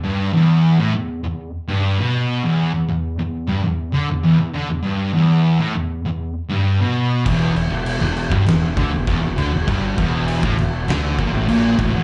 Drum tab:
CC |----------------|----------------|----------------|x-x-x-x-x-x-x-x-|
SD |----------------|----------------|----------------|-----o--o-------|
BD |----------------|----------------|----------------|o------o--o-o---|

CC |x-x-x-x-x-x-x-x-|
SD |--------o-------|
BD |o-o--o----o---o-|